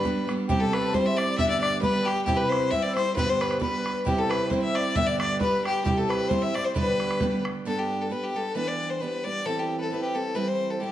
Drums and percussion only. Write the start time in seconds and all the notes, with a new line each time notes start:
0.05 bodhran
0.29 bodhran
0.50 bodhran
0.73 bodhran
0.94 bodhran
1.18 bodhran
1.39 bodhran
1.63 bodhran
1.83 bodhran
2.08 bodhran
2.28 bodhran
2.52 bodhran
2.73 bodhran
2.97 bodhran
3.17 bodhran
3.41 bodhran
3.51 bodhran
3.62 bodhran
3.86 bodhran
4.07 bodhran
4.31 bodhran
4.51 bodhran
4.75 bodhran
4.96 bodhran
5.20 bodhran
5.41 bodhran
5.65 bodhran
5.86 bodhran
6.10 bodhran
6.31 bodhran
6.55 bodhran
6.76 bodhran
7.00 bodhran
7.11 bodhran
7.21 bodhran
7.45 bodhran